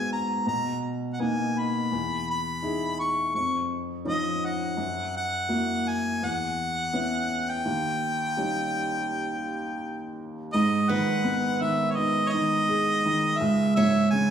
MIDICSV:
0, 0, Header, 1, 4, 480
1, 0, Start_track
1, 0, Key_signature, 5, "minor"
1, 0, Tempo, 717703
1, 1280, Time_signature, 4, 2, 24, 8
1, 9567, End_track
2, 0, Start_track
2, 0, Title_t, "Harmonica"
2, 0, Program_c, 0, 22
2, 83, Note_on_c, 0, 82, 72
2, 305, Note_off_c, 0, 82, 0
2, 320, Note_on_c, 0, 82, 70
2, 543, Note_off_c, 0, 82, 0
2, 756, Note_on_c, 0, 78, 42
2, 807, Note_on_c, 0, 80, 65
2, 817, Note_off_c, 0, 78, 0
2, 1062, Note_on_c, 0, 83, 75
2, 1072, Note_off_c, 0, 80, 0
2, 1531, Note_off_c, 0, 83, 0
2, 1542, Note_on_c, 0, 83, 78
2, 1984, Note_off_c, 0, 83, 0
2, 2003, Note_on_c, 0, 85, 72
2, 2224, Note_off_c, 0, 85, 0
2, 2242, Note_on_c, 0, 85, 71
2, 2464, Note_off_c, 0, 85, 0
2, 2730, Note_on_c, 0, 75, 69
2, 2977, Note_on_c, 0, 78, 75
2, 2987, Note_off_c, 0, 75, 0
2, 3447, Note_off_c, 0, 78, 0
2, 3455, Note_on_c, 0, 78, 88
2, 3934, Note_on_c, 0, 80, 77
2, 3944, Note_off_c, 0, 78, 0
2, 4176, Note_on_c, 0, 78, 84
2, 4186, Note_off_c, 0, 80, 0
2, 5019, Note_on_c, 0, 79, 80
2, 5029, Note_off_c, 0, 78, 0
2, 6814, Note_off_c, 0, 79, 0
2, 7041, Note_on_c, 0, 75, 72
2, 7288, Note_on_c, 0, 78, 85
2, 7298, Note_off_c, 0, 75, 0
2, 7768, Note_on_c, 0, 76, 71
2, 7778, Note_off_c, 0, 78, 0
2, 7963, Note_on_c, 0, 73, 55
2, 7973, Note_off_c, 0, 76, 0
2, 7997, Note_on_c, 0, 75, 73
2, 8007, Note_off_c, 0, 73, 0
2, 8193, Note_off_c, 0, 75, 0
2, 8203, Note_on_c, 0, 73, 57
2, 8223, Note_on_c, 0, 75, 91
2, 8233, Note_off_c, 0, 73, 0
2, 8946, Note_on_c, 0, 76, 90
2, 8957, Note_off_c, 0, 75, 0
2, 9193, Note_off_c, 0, 76, 0
2, 9200, Note_on_c, 0, 76, 86
2, 9423, Note_off_c, 0, 76, 0
2, 9432, Note_on_c, 0, 80, 86
2, 9567, Note_off_c, 0, 80, 0
2, 9567, End_track
3, 0, Start_track
3, 0, Title_t, "Steel-string acoustic guitar"
3, 0, Program_c, 1, 25
3, 7285, Note_on_c, 1, 71, 49
3, 8816, Note_off_c, 1, 71, 0
3, 9210, Note_on_c, 1, 73, 65
3, 9567, Note_off_c, 1, 73, 0
3, 9567, End_track
4, 0, Start_track
4, 0, Title_t, "Upright piano"
4, 0, Program_c, 2, 0
4, 0, Control_c, 2, 64, 127
4, 0, Note_on_c, 2, 44, 47
4, 0, Note_on_c, 2, 59, 38
4, 0, Note_on_c, 2, 66, 33
4, 0, Note_on_c, 2, 68, 40
4, 288, Note_off_c, 2, 44, 0
4, 305, Note_off_c, 2, 59, 0
4, 305, Note_off_c, 2, 66, 0
4, 306, Note_off_c, 2, 68, 0
4, 310, Note_on_c, 2, 47, 48
4, 329, Control_c, 2, 64, 0
4, 425, Control_c, 2, 64, 127
4, 799, Note_on_c, 2, 59, 39
4, 803, Note_on_c, 2, 63, 38
4, 804, Note_on_c, 2, 58, 46
4, 1249, Note_off_c, 2, 47, 0
4, 1265, Note_off_c, 2, 59, 0
4, 1267, Note_off_c, 2, 63, 0
4, 1268, Note_off_c, 2, 58, 0
4, 1282, Note_on_c, 2, 40, 50
4, 1290, Control_c, 2, 64, 0
4, 1415, Control_c, 2, 64, 127
4, 1754, Note_on_c, 2, 63, 35
4, 1759, Note_on_c, 2, 64, 33
4, 1763, Note_on_c, 2, 68, 41
4, 2213, Note_off_c, 2, 40, 0
4, 2222, Note_off_c, 2, 63, 0
4, 2224, Note_off_c, 2, 64, 0
4, 2226, Note_off_c, 2, 68, 0
4, 2237, Note_on_c, 2, 41, 45
4, 2247, Control_c, 2, 64, 0
4, 2360, Control_c, 2, 64, 127
4, 2707, Note_on_c, 2, 61, 44
4, 2712, Note_on_c, 2, 63, 38
4, 2718, Note_on_c, 2, 53, 47
4, 3170, Note_off_c, 2, 41, 0
4, 3178, Note_off_c, 2, 61, 0
4, 3180, Note_off_c, 2, 63, 0
4, 3183, Note_off_c, 2, 53, 0
4, 3191, Note_on_c, 2, 42, 50
4, 3206, Control_c, 2, 64, 0
4, 3335, Control_c, 2, 64, 127
4, 3668, Note_on_c, 2, 64, 35
4, 3669, Note_on_c, 2, 58, 39
4, 3671, Note_on_c, 2, 66, 41
4, 4125, Note_off_c, 2, 42, 0
4, 4137, Note_off_c, 2, 58, 0
4, 4137, Note_off_c, 2, 64, 0
4, 4138, Note_off_c, 2, 66, 0
4, 4162, Note_on_c, 2, 40, 50
4, 4165, Control_c, 2, 64, 0
4, 4295, Control_c, 2, 64, 127
4, 4637, Note_on_c, 2, 59, 42
4, 4639, Note_on_c, 2, 61, 37
4, 4645, Note_on_c, 2, 64, 47
4, 5091, Note_off_c, 2, 40, 0
4, 5101, Note_off_c, 2, 59, 0
4, 5102, Note_off_c, 2, 61, 0
4, 5105, Note_off_c, 2, 64, 0
4, 5117, Note_on_c, 2, 39, 49
4, 5122, Control_c, 2, 64, 0
4, 5251, Control_c, 2, 64, 127
4, 5598, Note_on_c, 2, 55, 37
4, 5604, Note_on_c, 2, 63, 44
4, 5606, Note_on_c, 2, 61, 35
4, 7017, Note_off_c, 2, 39, 0
4, 7017, Note_off_c, 2, 55, 0
4, 7020, Note_off_c, 2, 63, 0
4, 7021, Note_off_c, 2, 61, 0
4, 7048, Note_on_c, 2, 44, 59
4, 7051, Control_c, 2, 64, 0
4, 7159, Control_c, 2, 64, 127
4, 7284, Note_on_c, 2, 51, 46
4, 7518, Note_on_c, 2, 59, 47
4, 7751, Note_off_c, 2, 51, 0
4, 7761, Note_on_c, 2, 51, 47
4, 8007, Note_on_c, 2, 63, 45
4, 8241, Note_off_c, 2, 51, 0
4, 8251, Note_on_c, 2, 51, 45
4, 8454, Note_off_c, 2, 59, 0
4, 8486, Note_on_c, 2, 68, 55
4, 8719, Note_off_c, 2, 51, 0
4, 8729, Note_on_c, 2, 51, 52
4, 8937, Note_off_c, 2, 63, 0
4, 8938, Note_off_c, 2, 44, 0
4, 8949, Note_off_c, 2, 68, 0
4, 8958, Note_off_c, 2, 51, 0
4, 8965, Note_on_c, 2, 37, 59
4, 8969, Control_c, 2, 64, 0
4, 9092, Control_c, 2, 64, 127
4, 9209, Note_on_c, 2, 44, 46
4, 9447, Note_on_c, 2, 49, 50
4, 9567, Note_off_c, 2, 37, 0
4, 9567, Note_off_c, 2, 44, 0
4, 9567, Note_off_c, 2, 49, 0
4, 9567, End_track
0, 0, End_of_file